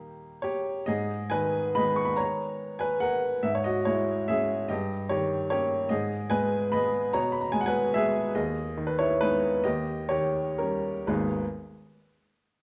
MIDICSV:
0, 0, Header, 1, 2, 480
1, 0, Start_track
1, 0, Key_signature, 5, "minor"
1, 0, Tempo, 446097
1, 949, Time_signature, 3, 2, 24, 8
1, 1896, Tempo, 420463
1, 4776, Tempo, 407056
1, 10056, Tempo, 442152
1, 11496, Tempo, 500835
1, 12456, Tempo, 469851
1, 14021, End_track
2, 0, Start_track
2, 0, Title_t, "Upright piano"
2, 0, Program_c, 0, 0
2, 0, Control_c, 0, 64, 127
2, 0, Note_on_c, 0, 51, 39
2, 0, Note_on_c, 0, 55, 36
2, 0, Note_on_c, 0, 58, 41
2, 0, Note_on_c, 0, 67, 58
2, 0, Note_on_c, 0, 75, 76
2, 428, Note_off_c, 0, 67, 0
2, 453, Note_on_c, 0, 73, 70
2, 465, Note_off_c, 0, 75, 0
2, 471, Note_on_c, 0, 67, 55
2, 906, Note_off_c, 0, 51, 0
2, 910, Note_off_c, 0, 55, 0
2, 912, Note_off_c, 0, 58, 0
2, 916, Note_off_c, 0, 67, 0
2, 927, Note_on_c, 0, 75, 78
2, 941, Note_off_c, 0, 73, 0
2, 944, Note_on_c, 0, 44, 52
2, 945, Note_on_c, 0, 68, 58
2, 966, Control_c, 0, 64, 0
2, 1149, Control_c, 0, 64, 127
2, 1383, Note_off_c, 0, 68, 0
2, 1395, Note_on_c, 0, 80, 92
2, 1406, Note_on_c, 0, 51, 44
2, 1407, Note_off_c, 0, 75, 0
2, 1413, Note_on_c, 0, 71, 69
2, 1860, Note_off_c, 0, 71, 0
2, 1881, Note_off_c, 0, 51, 0
2, 1884, Note_on_c, 0, 83, 97
2, 1885, Note_off_c, 0, 80, 0
2, 1891, Note_on_c, 0, 75, 65
2, 1897, Note_on_c, 0, 51, 41
2, 1903, Note_on_c, 0, 56, 39
2, 1907, Note_on_c, 0, 59, 47
2, 2118, Note_off_c, 0, 75, 0
2, 2124, Note_on_c, 0, 85, 64
2, 2131, Note_off_c, 0, 83, 0
2, 2227, Note_on_c, 0, 83, 67
2, 2248, Note_off_c, 0, 85, 0
2, 2325, Note_off_c, 0, 44, 0
2, 2354, Note_on_c, 0, 82, 82
2, 2358, Note_off_c, 0, 83, 0
2, 2367, Note_on_c, 0, 73, 63
2, 2392, Control_c, 0, 64, 0
2, 2607, Control_c, 0, 64, 127
2, 3048, Note_off_c, 0, 73, 0
2, 3070, Note_on_c, 0, 80, 74
2, 3087, Note_off_c, 0, 82, 0
2, 3087, Note_on_c, 0, 71, 57
2, 3313, Note_on_c, 0, 78, 88
2, 3319, Note_off_c, 0, 71, 0
2, 3328, Note_off_c, 0, 80, 0
2, 3332, Note_on_c, 0, 70, 55
2, 3766, Note_off_c, 0, 51, 0
2, 3768, Note_off_c, 0, 56, 0
2, 3771, Note_off_c, 0, 59, 0
2, 3773, Note_off_c, 0, 70, 0
2, 3796, Note_off_c, 0, 78, 0
2, 3797, Note_on_c, 0, 76, 74
2, 3802, Note_on_c, 0, 44, 51
2, 3828, Control_c, 0, 64, 0
2, 3919, Note_off_c, 0, 76, 0
2, 3936, Note_on_c, 0, 73, 65
2, 3993, Control_c, 0, 64, 127
2, 4042, Note_on_c, 0, 75, 76
2, 4048, Note_off_c, 0, 73, 0
2, 4060, Note_on_c, 0, 66, 57
2, 4277, Note_off_c, 0, 66, 0
2, 4282, Note_on_c, 0, 73, 77
2, 4284, Note_off_c, 0, 75, 0
2, 4298, Note_on_c, 0, 64, 55
2, 4299, Note_on_c, 0, 56, 45
2, 4748, Note_off_c, 0, 64, 0
2, 4770, Note_off_c, 0, 56, 0
2, 4770, Note_on_c, 0, 76, 87
2, 4774, Note_off_c, 0, 73, 0
2, 4779, Note_on_c, 0, 68, 61
2, 4788, Note_on_c, 0, 56, 40
2, 4794, Note_on_c, 0, 61, 50
2, 5211, Note_off_c, 0, 44, 0
2, 5219, Note_off_c, 0, 56, 0
2, 5222, Note_off_c, 0, 61, 0
2, 5228, Note_off_c, 0, 68, 0
2, 5247, Note_on_c, 0, 75, 73
2, 5257, Note_off_c, 0, 76, 0
2, 5260, Note_on_c, 0, 67, 56
2, 5266, Note_on_c, 0, 43, 47
2, 5282, Control_c, 0, 64, 0
2, 5482, Control_c, 0, 64, 127
2, 5707, Note_off_c, 0, 67, 0
2, 5730, Note_on_c, 0, 73, 78
2, 5734, Note_off_c, 0, 75, 0
2, 5741, Note_on_c, 0, 67, 56
2, 5748, Note_on_c, 0, 51, 49
2, 6184, Note_off_c, 0, 67, 0
2, 6193, Note_off_c, 0, 73, 0
2, 6211, Note_on_c, 0, 73, 84
2, 6219, Note_on_c, 0, 61, 46
2, 6221, Note_on_c, 0, 67, 60
2, 6227, Note_on_c, 0, 58, 42
2, 6503, Note_off_c, 0, 51, 0
2, 6635, Note_off_c, 0, 61, 0
2, 6639, Note_off_c, 0, 58, 0
2, 6641, Note_off_c, 0, 43, 0
2, 6650, Note_off_c, 0, 67, 0
2, 6670, Note_on_c, 0, 75, 77
2, 6677, Note_off_c, 0, 73, 0
2, 6685, Note_on_c, 0, 44, 52
2, 6693, Note_on_c, 0, 68, 59
2, 6701, Control_c, 0, 64, 0
2, 6909, Control_c, 0, 64, 127
2, 7128, Note_off_c, 0, 68, 0
2, 7148, Note_on_c, 0, 80, 97
2, 7150, Note_off_c, 0, 75, 0
2, 7158, Note_on_c, 0, 71, 67
2, 7166, Note_on_c, 0, 56, 44
2, 7616, Note_off_c, 0, 71, 0
2, 7645, Note_on_c, 0, 83, 85
2, 7646, Note_off_c, 0, 80, 0
2, 7647, Note_off_c, 0, 56, 0
2, 7656, Note_on_c, 0, 75, 69
2, 7665, Note_on_c, 0, 56, 40
2, 7666, Note_on_c, 0, 59, 51
2, 8087, Note_off_c, 0, 44, 0
2, 8089, Note_off_c, 0, 56, 0
2, 8089, Note_off_c, 0, 59, 0
2, 8098, Note_off_c, 0, 75, 0
2, 8126, Note_off_c, 0, 83, 0
2, 8133, Note_on_c, 0, 82, 85
2, 8141, Note_on_c, 0, 73, 61
2, 8146, Note_on_c, 0, 47, 59
2, 8147, Control_c, 0, 64, 0
2, 8300, Control_c, 0, 64, 127
2, 8352, Note_off_c, 0, 73, 0
2, 8357, Note_on_c, 0, 83, 59
2, 8364, Note_off_c, 0, 82, 0
2, 8461, Note_on_c, 0, 82, 69
2, 8477, Note_off_c, 0, 83, 0
2, 8589, Note_off_c, 0, 82, 0
2, 8591, Note_on_c, 0, 80, 89
2, 8608, Note_on_c, 0, 56, 51
2, 8672, Note_off_c, 0, 80, 0
2, 8694, Note_on_c, 0, 78, 77
2, 8756, Note_on_c, 0, 80, 90
2, 8763, Note_off_c, 0, 78, 0
2, 8775, Note_on_c, 0, 71, 61
2, 9067, Note_off_c, 0, 71, 0
2, 9080, Note_off_c, 0, 80, 0
2, 9085, Note_on_c, 0, 76, 98
2, 9092, Note_off_c, 0, 56, 0
2, 9104, Note_on_c, 0, 68, 74
2, 9109, Note_on_c, 0, 56, 41
2, 9109, Note_on_c, 0, 59, 51
2, 9526, Note_off_c, 0, 47, 0
2, 9529, Note_off_c, 0, 56, 0
2, 9529, Note_off_c, 0, 59, 0
2, 9540, Note_off_c, 0, 68, 0
2, 9563, Note_off_c, 0, 76, 0
2, 9568, Note_on_c, 0, 75, 75
2, 9571, Note_on_c, 0, 39, 54
2, 9574, Note_on_c, 0, 68, 49
2, 9583, Control_c, 0, 64, 0
2, 9765, Control_c, 0, 64, 127
2, 10067, Note_on_c, 0, 51, 49
2, 10143, Note_off_c, 0, 68, 0
2, 10171, Note_on_c, 0, 71, 58
2, 10180, Note_off_c, 0, 75, 0
2, 10294, Note_off_c, 0, 71, 0
2, 10300, Note_on_c, 0, 73, 82
2, 10312, Note_on_c, 0, 64, 58
2, 10529, Note_off_c, 0, 64, 0
2, 10538, Note_on_c, 0, 71, 88
2, 10539, Note_off_c, 0, 73, 0
2, 10549, Note_on_c, 0, 59, 50
2, 10552, Note_on_c, 0, 63, 60
2, 10555, Note_on_c, 0, 56, 42
2, 10829, Note_off_c, 0, 51, 0
2, 10971, Note_off_c, 0, 59, 0
2, 10972, Note_off_c, 0, 39, 0
2, 10974, Note_off_c, 0, 56, 0
2, 10984, Note_off_c, 0, 63, 0
2, 11005, Note_on_c, 0, 75, 76
2, 11010, Note_off_c, 0, 71, 0
2, 11018, Note_on_c, 0, 67, 58
2, 11021, Note_on_c, 0, 39, 51
2, 11028, Control_c, 0, 64, 0
2, 11191, Control_c, 0, 64, 127
2, 11467, Note_off_c, 0, 67, 0
2, 11494, Note_off_c, 0, 75, 0
2, 11494, Note_on_c, 0, 73, 83
2, 11507, Note_on_c, 0, 67, 61
2, 11517, Note_on_c, 0, 51, 43
2, 11943, Note_off_c, 0, 67, 0
2, 11969, Note_off_c, 0, 73, 0
2, 11969, Note_on_c, 0, 70, 66
2, 11977, Note_on_c, 0, 61, 45
2, 11982, Note_on_c, 0, 55, 39
2, 12282, Note_off_c, 0, 51, 0
2, 12423, Note_off_c, 0, 39, 0
2, 12424, Note_off_c, 0, 55, 0
2, 12426, Note_off_c, 0, 61, 0
2, 12438, Note_on_c, 0, 32, 55
2, 12438, Note_on_c, 0, 71, 49
2, 12442, Note_on_c, 0, 39, 53
2, 12448, Note_on_c, 0, 59, 52
2, 12450, Note_on_c, 0, 56, 46
2, 12451, Note_on_c, 0, 63, 51
2, 12456, Note_off_c, 0, 70, 0
2, 12458, Note_on_c, 0, 68, 49
2, 12474, Control_c, 0, 64, 0
2, 12619, Control_c, 0, 64, 127
2, 12710, Note_off_c, 0, 32, 0
2, 12710, Note_off_c, 0, 71, 0
2, 12712, Note_off_c, 0, 39, 0
2, 12715, Note_off_c, 0, 59, 0
2, 12717, Note_off_c, 0, 56, 0
2, 12717, Note_off_c, 0, 63, 0
2, 12721, Note_off_c, 0, 68, 0
2, 12811, Control_c, 0, 64, 0
2, 14021, End_track
0, 0, End_of_file